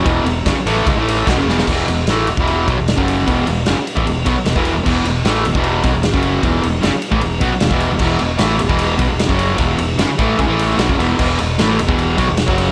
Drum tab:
CC |----------------|x---------------|----------------|x---------------|
RD |x-x-x-x-x-x-x---|--x-x-x-x-x-x-x-|x-x-x-x-x-x-x-x-|--x-x-x-x-x-x-x-|
SD |----o-------o-oo|----o-------o---|----o-------o---|----o-------o---|
BD |o---o---o---o---|o------o--o--o--|o------o--o--o--|o------o--o--o--|

CC |----------------|x---------------|----------------|x---------------|
RD |x-x-x-x-x-x-x-x-|--x-x-x-x-x-x-x-|x-x-x-x-x-x-x-x-|--x-x-x-x-x-x-x-|
SD |----o-------o---|----o-------o---|----o-------o---|----o-------o---|
BD |o------o--o--o--|o------o--o--o--|o-----o-o----o--|o------o--o--o--|